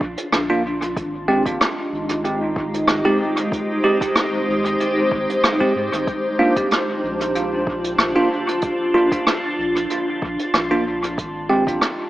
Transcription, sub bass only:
0.01 A#1
0.33 A#1
0.97 G#1
1.92 G#1
2.88 G#1
4.48 G#1
5.12 G#1
5.76 G#2
5.93 G#1
7.03 A#1
7.99 A#1
9.58 A#1
10.22 A#1
10.54 A#1
11.18 G#1

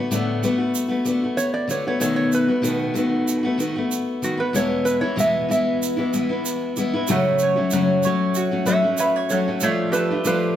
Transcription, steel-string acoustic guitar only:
Already playing: B3 F#4
0.00 A3
0.11 A2 D3 A3 B3 F#4
0.43 D3 A3 B3 F#4
0.58 A3 B3 F#4
0.88 A3 B3 F#4
1.05 D3 A3 B3 F#4
1.23 A3 B3 F#4
1.68 D3 A3 B3 F#4
1.87 A3 B3 F#4
2.00 B2 D#3 A3 B3 F#4
2.48 A3 B3 F#4
2.62 B2 D#3 A3 B3 F#4
2.94 D#3 A3 B3 F#4
3.43 A3 B3 F#4
3.58 D#3 A3 B3 F#4
3.76 A3 B3 F#4
4.22 D#3 A3 B3 F#4
4.37 A3 B3 F#4
4.53 E2 B2 E3 G#3 B3 E4
5.01 E3 G#3 B3 E4
5.16 E2 B2 E3 G#3 B3 E4
5.49 E3 G#3 B3 E4
5.97 E3 G#3 B3 E4
6.13 E3 G#3 B3 E4
6.29 E3 G#3 B3 E4
6.77 E3 G#3 B3 E4
6.93 E3 G#3 B3 E4
7.08 F#2 C#3 F#3 A3 C#4 F#4
7.56 F#3 A3 C#4 F#4
7.72 F#2 C#3 F#3 A3 C#4 F#4
8.05 F#3 A3 C#4 F#4
8.51 F#3 A3 C#4 F#4
8.65 F#3 A3 C#4 F#4
8.83 F#3 A3 C#4 F#4
9.30 F#3 A3 C#4 F#4
9.48 F#3 A3 C#4 F#4
9.61 F3 A3 D4 F4
10.10 A3 D4 F4
10.25 F3 A3 D4 F4

